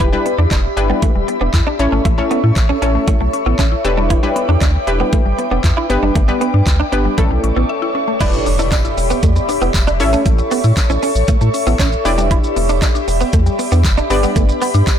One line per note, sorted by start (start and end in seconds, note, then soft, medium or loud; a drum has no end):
0.00 0.16 E1 loud
0.00 0.10 E3 medium
0.00 0.07 E4 medium
0.00 1.76 G4 medium
0.00 0.06 B4 loud
0.00 1.76 D5 medium
0.00 5.86 E5 medium
0.00 1.76 B5 medium
0.00 kick loud
0.00 closed hi-hat medium
0.13 0.23 G3 medium
0.13 0.43 D4 medium
0.13 0.43 E4 medium
0.13 0.43 G4 medium
0.13 0.44 B4 loud
0.26 0.35 B3 medium
0.26 muted clean electric guitar stroke soft
0.26 closed hi-hat medium
0.38 0.46 E2 loud
0.38 0.46 D4 medium
0.38 0.48 D4 medium
0.51 0.67 E1 loud
0.51 0.59 D4 medium
0.51 kick loud
0.51 clap loud
0.51 closed hi-hat medium
0.77 0.93 G1 loud
0.77 1.26 D4 medium
0.77 1.26 E4 medium
0.77 1.26 G4 medium
0.77 1.26 B4 loud
0.77 muted clean electric guitar stroke soft
0.77 closed hi-hat soft
0.90 1.00 G3 medium
0.90 0.97 B3 medium
1.02 1.12 E3 medium
1.02 1.10 A3 medium
1.02 kick loud
1.02 closed hi-hat medium
1.15 1.23 E1 loud
1.15 1.25 G3 medium
1.28 1.38 B3 medium
1.28 muted clean electric guitar stroke soft
1.28 closed hi-hat soft
1.41 1.49 E1 medium
1.41 1.48 B3 medium
1.41 1.51 D4 medium
1.54 1.62 E2 loud
1.54 1.64 E4 medium
1.54 kick medium
1.54 clap loud
1.54 closed hi-hat medium
1.67 1.74 D4 medium
1.67 1.77 D4 medium
1.79 1.87 A1 loud
1.79 2.10 C#4 medium
1.79 1.89 C#4 medium
1.79 2.10 E4 medium
1.79 3.83 A4 medium
1.79 2.10 A4 medium
1.79 3.83 C#5 medium
1.79 2.10 C#5 loud
1.79 3.83 C#6 medium
1.79 muted clean electric guitar stroke soft
1.79 closed hi-hat soft
1.92 2.00 G#1 medium
1.92 2.02 A3 medium
1.92 2.00 C#4 medium
2.05 2.21 A1 loud
2.05 2.15 E3 loud
2.05 2.13 A3 medium
2.05 kick loud
2.05 closed hi-hat medium
2.18 2.28 A3 medium
2.18 2.48 C#4 medium
2.18 2.49 E4 medium
2.18 2.49 A4 medium
2.18 2.49 C#5 loud
2.18 muted clean electric guitar stroke soft
2.31 2.38 B3 medium
2.31 2.41 C#4 medium
2.31 closed hi-hat medium
2.44 2.52 A2 loud
2.44 2.53 E4 medium
2.56 2.72 A1 loud
2.56 muted clean electric guitar stroke soft
2.56 kick loud
2.56 clap loud
2.56 closed hi-hat medium
2.69 2.77 C#4 medium
2.82 2.98 A1 medium
2.82 3.31 C#4 medium
2.82 2.90 C#4 medium
2.82 3.31 E4 medium
2.82 3.31 A4 medium
2.82 3.31 C#5 medium
2.82 closed hi-hat soft
2.95 3.05 A3 medium
3.08 3.18 E3 medium
3.08 3.15 A3 medium
3.08 kick loud
3.08 closed hi-hat medium
3.21 3.29 B1 medium
3.21 3.30 A3 medium
3.21 muted clean electric guitar stroke soft
3.33 3.43 C#4 medium
3.33 closed hi-hat soft
3.46 3.54 A1 medium
3.46 3.54 B3 medium
3.46 3.56 E4 medium
3.59 3.75 A1 medium
3.59 3.66 C#4 medium
3.59 3.69 E5 loud
3.59 kick loud
3.59 clap loud
3.59 closed hi-hat medium
3.72 3.82 E4 medium
3.84 4.16 E1 loud
3.84 3.94 B3 medium
3.84 4.15 D4 loud
3.84 4.15 E4 medium
3.84 4.16 G4 medium
3.84 7.15 B4 medium
3.84 4.16 B4 loud
3.84 5.88 G5 medium
3.84 5.88 D6 medium
3.84 muted clean electric guitar stroke soft
3.84 closed hi-hat soft
3.97 4.07 G3 medium
3.97 4.05 D4 medium
4.10 4.20 E3 medium
4.10 4.18 E4 medium
4.10 kick loud
4.10 closed hi-hat medium
4.23 4.33 G3 medium
4.23 4.54 D4 medium
4.23 4.54 E4 medium
4.23 4.54 G4 medium
4.23 4.54 B4 loud
4.36 4.46 B3 medium
4.36 muted clean electric guitar stroke soft
4.36 closed hi-hat medium
4.49 4.57 E2 medium
4.49 4.59 D4 medium
4.49 4.56 D4 medium
4.61 4.77 D2 loud
4.61 4.69 D4 medium
4.61 kick loud
4.61 clap loud
4.61 closed hi-hat medium
4.87 5.03 E1 medium
4.87 5.36 D4 medium
4.87 5.36 E4 medium
4.87 5.36 G4 medium
4.87 5.36 B4 loud
4.87 muted clean electric guitar stroke soft
4.87 closed hi-hat soft
5.00 5.10 G3 medium
5.00 5.08 B3 medium
5.13 5.23 E3 medium
5.13 5.20 A3 medium
5.13 kick loud
5.13 closed hi-hat medium
5.26 5.34 G1 medium
5.26 5.35 G3 medium
5.38 5.48 B3 medium
5.38 muted clean electric guitar stroke soft
5.38 closed hi-hat soft
5.51 5.59 E1 medium
5.51 5.59 B3 medium
5.51 5.61 D4 medium
5.64 5.72 E2 loud
5.64 5.74 E4 medium
5.64 kick loud
5.64 clap loud
5.64 closed hi-hat medium
5.77 5.87 D4 medium
5.77 5.84 E4 medium
5.90 5.98 G1 loud
5.90 6.20 B3 medium
5.90 6.00 B3 medium
5.90 6.21 D4 medium
5.90 6.21 G4 medium
5.90 6.21 B4 loud
5.90 7.17 D5 medium
5.90 7.17 G5 medium
5.90 7.17 D6 medium
5.90 muted clean electric guitar stroke soft
5.90 closed hi-hat soft
6.03 6.11 F#1 medium
6.03 6.12 G3 medium
6.03 6.10 D4 medium
6.15 6.31 G1 loud
6.15 6.25 D3 loud
6.15 6.23 A3 medium
6.15 kick loud
6.15 closed hi-hat medium
6.28 6.38 G3 medium
6.28 6.59 B3 medium
6.28 6.59 D4 medium
6.28 6.59 G4 medium
6.28 6.59 B4 loud
6.28 muted clean electric guitar stroke soft
6.41 6.51 B3 medium
6.41 6.49 B3 medium
6.41 closed hi-hat medium
6.54 6.62 G2 medium
6.54 6.64 D4 medium
6.67 6.83 D2 loud
6.67 muted clean electric guitar stroke soft
6.67 kick loud
6.67 clap loud
6.67 closed hi-hat medium
6.80 6.87 D4 medium
6.92 7.08 G1 loud
6.92 7.18 B3 medium
6.92 7.18 D4 medium
6.92 7.00 D4 medium
6.92 7.18 G4 medium
6.92 7.18 B4 medium
6.92 closed hi-hat soft
7.05 7.15 G3 medium
7.18 7.26 A1 loud
7.18 7.28 E3 medium
7.18 8.00 A3 medium
7.18 7.26 A3 medium
7.18 8.00 C#4 medium
7.18 8.00 E4 medium
7.18 8.20 A4 medium
7.18 8.00 A4 loud
7.18 8.20 C#5 medium
7.18 8.19 E5 medium
7.18 8.20 C#6 medium
7.18 kick loud
7.18 closed hi-hat medium
7.31 7.39 B1 medium
7.31 7.41 A3 medium
7.31 muted clean electric guitar stroke soft
7.44 7.52 A1 medium
7.44 7.53 C#4 medium
7.44 closed hi-hat soft
7.57 7.64 A1 medium
7.57 7.64 B3 medium
7.57 7.66 E4 medium
7.69 7.79 E5 medium
7.82 7.92 E4 medium
7.95 8.05 C#4 medium
8.08 8.18 A3 medium
8.20 8.36 E1 loud
8.20 8.30 G3 medium
8.20 8.69 D4 medium
8.20 8.69 E4 medium
8.20 8.28 E4 medium
8.20 9.98 G4 medium
8.20 8.70 G4 medium
8.20 8.70 B4 medium
8.20 9.98 D5 medium
8.20 8.70 D5 loud
8.20 9.98 E5 medium
8.20 9.98 B5 medium
8.20 kick loud
8.20 closed hi-hat medium
8.20 crash loud
8.20 impact medium
8.20 shaker medium
8.34 shaker medium
8.46 8.70 E1 loud
8.46 8.56 D4 medium
8.46 muted clean electric guitar stroke soft
8.46 open hi-hat medium
8.46 shaker medium
8.59 8.67 D4 medium
8.59 8.69 E4 medium
8.59 shaker medium
8.72 8.79 D4 medium
8.72 kick loud
8.72 clap loud
8.72 closed hi-hat medium
8.72 tambourine medium
8.72 shaker medium
8.85 8.94 E4 medium
8.85 shaker medium
8.98 9.13 E1 medium
8.98 muted clean electric guitar stroke soft
8.98 open hi-hat medium
8.98 shaker soft
9.10 9.18 B3 medium
9.10 shaker medium
9.23 9.39 E2 loud
9.23 9.31 A3 medium
9.23 kick loud
9.23 closed hi-hat medium
9.23 shaker medium
9.36 9.46 B3 medium
9.36 shaker medium
9.49 9.59 D4 medium
9.49 muted clean electric guitar stroke soft
9.49 open hi-hat medium
9.49 shaker soft
9.62 9.70 E1 medium
9.62 9.69 B3 medium
9.62 9.71 E4 medium
9.62 shaker medium
9.74 10.02 E1 loud
9.74 kick loud
9.74 clap loud
9.74 closed hi-hat medium
9.74 tambourine medium
9.74 shaker medium
9.87 9.95 D4 medium
9.87 shaker medium
10.00 10.16 A1 loud
10.00 10.82 C#4 medium
10.00 10.10 C#4 medium
10.00 10.82 E4 medium
10.00 10.82 A4 medium
10.00 12.03 A4 medium
10.00 12.03 C#5 medium
10.00 10.82 C#5 medium
10.00 14.06 E5 medium
10.00 10.82 E5 loud
10.00 12.03 C#6 medium
10.00 muted clean electric guitar stroke soft
10.00 open hi-hat medium
10.00 shaker soft
10.13 10.23 A3 medium
10.13 10.20 C#4 medium
10.13 shaker medium
10.26 10.42 A1 loud
10.26 10.35 E3 loud
10.26 10.33 A3 medium
10.26 kick loud
10.26 closed hi-hat medium
10.26 shaker medium
10.38 muted clean electric guitar stroke soft
10.38 shaker medium
10.51 10.59 B3 medium
10.51 10.61 C#4 medium
10.51 open hi-hat medium
10.51 shaker medium
10.64 10.72 A2 loud
10.64 10.74 E4 medium
10.64 shaker medium
10.77 muted clean electric guitar stroke soft
10.77 kick loud
10.77 clap loud
10.77 closed hi-hat medium
10.77 tambourine medium
10.77 shaker medium
10.90 10.98 A1 loud
10.90 10.97 C#4 medium
10.90 11.00 E4 medium
10.90 shaker medium
11.03 11.10 C#4 medium
11.03 open hi-hat medium
11.03 shaker soft
11.15 11.23 A1 medium
11.15 shaker medium
11.28 11.33 A2 soft
11.28 11.36 A3 medium
11.28 kick loud
11.28 closed hi-hat medium
11.28 shaker medium
11.41 11.49 A2 loud
11.41 11.51 A3 medium
11.41 muted clean electric guitar stroke soft
11.41 shaker medium
11.54 11.64 C#4 medium
11.54 open hi-hat medium
11.54 shaker soft
11.67 11.75 A1 medium
11.67 11.74 B3 medium
11.67 11.77 E4 medium
11.67 shaker medium
11.79 11.95 A1 loud
11.79 11.87 C#4 medium
11.79 kick loud
11.79 clap loud
11.79 closed hi-hat medium
11.79 tambourine medium
11.79 shaker medium
11.92 shaker medium
12.05 12.37 E1 loud
12.05 12.15 B3 medium
12.05 12.87 D4 loud
12.05 12.87 E4 medium
12.05 12.87 G4 medium
12.05 14.99 G4 medium
12.05 12.87 B4 medium
12.05 14.99 D5 medium
12.05 12.87 D5 loud
12.05 14.99 B5 medium
12.05 muted clean electric guitar stroke soft
12.05 open hi-hat medium
12.05 shaker soft
12.18 12.28 G3 medium
12.18 12.25 D4 medium
12.18 shaker medium
12.31 12.41 E3 loud
12.31 12.38 E4 medium
12.31 kick loud
12.31 closed hi-hat medium
12.31 shaker medium
12.44 shaker medium
12.56 12.80 E1 loud
12.56 12.66 B3 medium
12.56 muted clean electric guitar stroke soft
12.56 open hi-hat medium
12.56 shaker medium
12.69 12.79 D4 medium
12.69 12.77 D4 medium
12.69 shaker medium
12.82 12.90 D4 medium
12.82 kick loud
12.82 clap loud
12.82 closed hi-hat medium
12.82 tambourine medium
12.82 shaker medium
12.95 13.05 D4 medium
12.95 shaker medium
13.08 13.24 E1 loud
13.08 muted clean electric guitar stroke soft
13.08 open hi-hat medium
13.08 shaker medium
13.21 13.28 B3 medium
13.21 shaker medium
13.33 13.49 E2 loud
13.33 13.41 A3 medium
13.33 kick loud
13.33 closed hi-hat medium
13.33 shaker medium
13.46 13.56 G3 medium
13.46 shaker medium
13.59 13.69 B3 medium
13.59 muted clean electric guitar stroke soft
13.59 open hi-hat medium
13.59 shaker soft
13.72 13.86 E2 medium
13.72 13.79 B3 medium
13.72 13.82 D4 medium
13.72 shaker medium
13.85 14.00 E1 loud
13.85 kick loud
13.85 clap loud
13.85 closed hi-hat medium
13.85 tambourine medium
13.85 shaker medium
13.98 14.05 D4 medium
13.98 shaker medium
14.10 14.26 G1 loud
14.10 14.92 B3 loud
14.10 14.20 B3 medium
14.10 14.92 D4 medium
14.10 14.92 G4 medium
14.10 14.99 B4 medium
14.10 14.92 B4 medium
14.10 14.93 D5 loud
14.10 muted clean electric guitar stroke soft
14.10 open hi-hat medium
14.10 shaker soft
14.23 14.33 G3 medium
14.23 14.31 B3 medium
14.23 shaker medium
14.36 14.52 G1 loud
14.36 14.46 D3 loud
14.36 14.43 A3 medium
14.36 kick loud
14.36 closed hi-hat medium
14.36 shaker medium
14.49 muted clean electric guitar stroke soft
14.49 shaker medium
14.62 14.71 B3 medium
14.62 14.69 B3 medium
14.62 open hi-hat medium
14.62 shaker medium
14.74 14.82 G2 loud
14.74 14.84 D4 medium
14.74 shaker medium
14.87 muted clean electric guitar stroke soft
14.87 kick loud
14.87 clap loud
14.87 closed hi-hat medium
14.87 tambourine medium
14.87 shaker medium